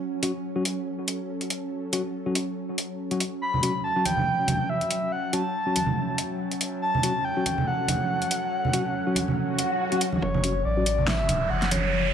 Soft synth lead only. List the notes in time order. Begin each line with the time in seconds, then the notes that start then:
3.42 B5
3.84 A5
4.05 G5
4.69 E5
5.12 F#5
5.33 A5
6.82 A5
7.25 G5
7.67 F#5
10.23 C#5
10.65 D5
11.08 E5
11.50 F#5
11.71 C#5